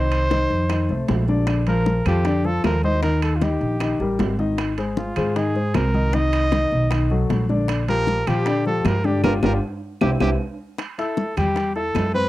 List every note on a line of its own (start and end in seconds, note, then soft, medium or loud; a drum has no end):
0.00 0.45 C2 medium
0.00 0.25 D#3 medium
0.00 0.25 D#4 medium
0.00 1.10 C5 loud
0.00 0.25 D#5 medium
0.12 high conga soft
0.12 high timbale medium
0.12 claves medium
0.31 0.63 D#3 medium
0.31 0.63 D#4 medium
0.31 0.64 D#5 medium
0.31 high bongo medium
0.31 high conga medium
0.31 high timbale medium
0.50 0.87 F2 medium
0.50 high bongo soft
0.50 high conga soft
0.70 0.86 D#3 medium
0.70 0.87 D#4 medium
0.70 0.87 D#5 medium
0.70 high bongo medium
0.70 high conga soft
0.70 high timbale medium
0.70 claves medium
0.89 1.08 C2 medium
0.89 1.22 A3 medium
0.89 1.22 A4 medium
0.89 1.22 C5 medium
0.89 high bongo soft
0.89 high conga soft
1.08 2.00 A#1 loud
1.08 high bongo soft
1.08 low bongo medium
1.08 high conga medium
1.08 high timbale medium
1.08 low timbale medium
1.28 1.61 D3 medium
1.28 1.61 D4 medium
1.28 1.61 D5 medium
1.28 high bongo soft
1.28 high conga medium
1.47 high bongo medium
1.47 high conga soft
1.47 high timbale medium
1.47 claves medium
1.67 1.99 F3 medium
1.67 2.00 F4 medium
1.67 2.00 A#4 medium
1.67 2.04 A#4 medium
1.67 high conga soft
1.67 high timbale medium
1.86 high bongo medium
1.86 high conga medium
2.06 2.60 F2 medium
2.06 2.22 F3 medium
2.06 2.22 F4 medium
2.06 2.47 G4 medium
2.06 2.23 A4 medium
2.06 high bongo soft
2.06 high conga soft
2.06 low conga medium
2.06 high timbale medium
2.06 claves medium
2.25 2.42 D3 medium
2.25 2.42 D4 medium
2.25 2.42 D5 medium
2.25 high bongo medium
2.25 high conga soft
2.25 high timbale medium
2.44 2.77 F3 medium
2.44 2.77 F4 medium
2.44 2.77 A4 medium
2.44 2.65 A4 medium
2.44 high bongo soft
2.44 high conga soft
2.64 3.55 D#2 loud
2.64 2.83 A#4 medium
2.64 high bongo soft
2.64 low bongo medium
2.64 high conga medium
2.64 high timbale medium
2.64 low timbale medium
2.64 claves medium
2.83 3.00 D#3 medium
2.83 3.00 D#4 medium
2.83 3.02 C5 loud
2.83 3.00 D#5 medium
2.83 high bongo soft
2.83 high conga medium
3.03 3.35 D#3 medium
3.03 3.36 D#4 medium
3.03 3.22 A#4 medium
3.03 3.36 D#5 medium
3.03 high bongo medium
3.03 high timbale medium
3.22 3.37 A4 medium
3.22 high conga soft
3.22 high timbale loud
3.22 claves medium
3.36 3.44 F4 medium
3.41 3.74 D#3 medium
3.41 3.74 D#4 medium
3.41 4.20 G4 medium
3.41 3.74 D#5 medium
3.41 high bongo medium
3.41 high conga medium
3.41 high timbale medium
3.61 3.97 A#1 medium
3.61 high bongo soft
3.61 high conga soft
3.80 3.97 D#3 medium
3.80 3.97 D#4 medium
3.80 3.97 D#5 medium
3.80 high bongo medium
3.80 high conga soft
3.80 high timbale medium
3.80 claves medium
4.00 4.18 A1 medium
4.00 4.32 G3 medium
4.00 4.33 G4 medium
4.00 4.33 A#4 medium
4.00 high bongo soft
4.00 high conga soft
4.19 5.11 G#1 medium
4.19 high bongo soft
4.19 low bongo medium
4.19 high conga medium
4.19 high timbale medium
4.19 low timbale medium
4.39 4.71 D#3 medium
4.39 4.71 D#4 medium
4.39 4.71 D#5 medium
4.39 high bongo soft
4.39 high conga medium
4.58 high bongo medium
4.58 high timbale loud
4.58 claves medium
4.78 5.10 G#3 medium
4.78 5.10 G#4 medium
4.78 5.10 C5 medium
4.78 high conga soft
4.78 high timbale medium
4.97 5.38 F4 medium
4.97 high bongo medium
4.97 high conga medium
5.16 5.71 G#2 medium
5.16 5.33 G#3 medium
5.16 5.33 G#4 medium
5.16 5.33 C5 medium
5.16 high bongo soft
5.16 high conga soft
5.16 low conga medium
5.16 high timbale medium
5.16 claves medium
5.36 5.52 D#3 medium
5.36 5.52 D#4 medium
5.36 5.76 G#4 medium
5.36 5.52 D#5 medium
5.36 high bongo medium
5.36 high conga soft
5.36 high timbale medium
5.55 5.87 G#3 medium
5.55 5.87 G#4 medium
5.55 5.88 C5 medium
5.55 high bongo soft
5.55 high conga soft
5.74 6.66 C2 medium
5.74 6.16 A#4 medium
5.74 high bongo soft
5.74 low bongo medium
5.74 high conga medium
5.74 high timbale medium
5.74 low timbale medium
5.74 claves medium
5.94 6.10 D#3 medium
5.94 6.10 D#4 medium
5.94 6.11 D#5 medium
5.94 high bongo soft
5.94 high conga medium
6.13 6.46 D#3 medium
6.13 6.46 D#4 medium
6.13 6.46 D#5 medium
6.13 7.31 D#5 loud
6.13 high bongo medium
6.13 high conga soft
6.13 high timbale medium
6.33 high conga soft
6.33 high timbale medium
6.33 claves medium
6.52 6.84 D#3 medium
6.52 6.84 D#4 medium
6.52 6.85 D#5 medium
6.52 high bongo medium
6.52 high conga medium
6.52 high timbale medium
6.71 7.26 B1 medium
6.71 high bongo soft
6.71 high conga soft
6.91 7.07 D#3 medium
6.91 7.07 D#4 medium
6.91 7.08 D#5 medium
6.91 high bongo medium
6.91 high conga soft
6.91 high timbale medium
6.91 claves medium
7.10 7.43 F#3 medium
7.10 7.43 F#4 medium
7.10 7.43 A4 medium
7.10 high bongo soft
7.10 high conga soft
7.30 8.21 A#1 medium
7.30 high bongo soft
7.30 low bongo medium
7.30 high conga medium
7.30 high timbale medium
7.49 7.81 D3 medium
7.49 7.81 D4 medium
7.49 7.81 D5 medium
7.49 high bongo soft
7.49 high conga medium
7.68 high bongo medium
7.68 high conga soft
7.68 high timbale loud
7.68 claves medium
7.88 8.20 F3 medium
7.88 8.20 F4 medium
7.88 8.21 G4 medium
7.88 8.29 A#4 loud
7.88 high conga soft
7.88 high timbale medium
8.07 high bongo medium
8.07 high conga medium
8.27 8.81 A#2 medium
8.27 8.43 F3 medium
8.27 8.43 F4 medium
8.27 8.66 G4 loud
8.27 8.43 G4 medium
8.27 high bongo soft
8.27 high conga soft
8.27 low conga medium
8.27 high timbale medium
8.27 claves medium
8.46 8.63 D3 medium
8.46 8.63 D4 medium
8.46 8.63 D5 medium
8.46 high bongo medium
8.46 high conga soft
8.46 high timbale medium
8.65 8.98 F3 medium
8.65 8.98 F4 medium
8.65 8.98 G4 medium
8.65 8.88 A4 loud
8.65 high bongo soft
8.65 high conga soft
8.85 9.21 G2 medium
8.85 9.07 A#4 loud
8.85 high bongo soft
8.85 low bongo medium
8.85 high conga medium
8.85 high timbale medium
8.85 low timbale medium
8.85 claves medium
9.04 9.21 D3 medium
9.04 9.21 D4 medium
9.04 9.24 G4 medium
9.04 9.21 D5 medium
9.04 high bongo soft
9.04 high conga medium
9.24 9.38 G1 loud
9.24 9.37 D4 loud
9.24 9.37 F4 loud
9.24 9.37 G4 medium
9.24 9.34 A#4 medium
9.24 low bongo loud
9.24 high conga loud
9.24 high timbale loud
9.24 claves medium
9.43 9.58 G1 medium
9.43 9.56 D4 loud
9.43 9.56 F4 loud
9.43 9.56 G4 loud
9.43 9.53 A#4 medium
9.43 low bongo loud
9.43 high conga loud
9.43 high timbale loud
9.43 claves medium
10.01 10.16 C2 medium
10.01 10.14 C4 medium
10.01 10.14 E4 medium
10.01 10.11 G4 medium
10.01 10.14 G4 medium
10.01 low bongo loud
10.01 high conga loud
10.01 high timbale medium
10.01 claves loud
10.20 10.35 C2 medium
10.20 10.33 C4 medium
10.20 10.33 E4 medium
10.20 10.33 G4 medium
10.20 10.31 G4 loud
10.20 low bongo medium
10.20 high conga loud
10.20 high timbale medium
10.20 claves loud
10.79 high bongo medium
10.79 high conga soft
10.79 high timbale medium
10.79 claves medium
10.98 11.30 E4 medium
10.98 11.35 A4 medium
10.98 11.31 E5 medium
10.98 11.31 E6 medium
10.98 high conga soft
10.98 high timbale medium
11.17 high bongo medium
11.17 high conga medium
11.37 11.92 E2 medium
11.37 11.69 G3 medium
11.37 11.69 G4 medium
11.37 11.74 G4 medium
11.37 11.70 G5 medium
11.37 high bongo soft
11.37 high conga soft
11.37 low conga medium
11.37 high timbale medium
11.37 claves medium
11.56 high bongo medium
11.56 high conga soft
11.56 high timbale medium
11.76 12.08 E4 medium
11.76 12.12 A4 loud
11.76 12.08 E5 medium
11.76 12.08 E6 medium
11.76 high bongo soft
11.76 high conga soft
11.95 12.29 F#2 medium
11.95 high bongo soft
11.95 low bongo medium
11.95 high conga medium
11.95 high timbale medium
11.95 low timbale medium
11.95 claves medium
12.14 12.29 C4 medium
12.14 12.29 B4 loud
12.14 12.29 C5 medium
12.14 12.29 C6 medium
12.14 high bongo soft
12.14 high conga medium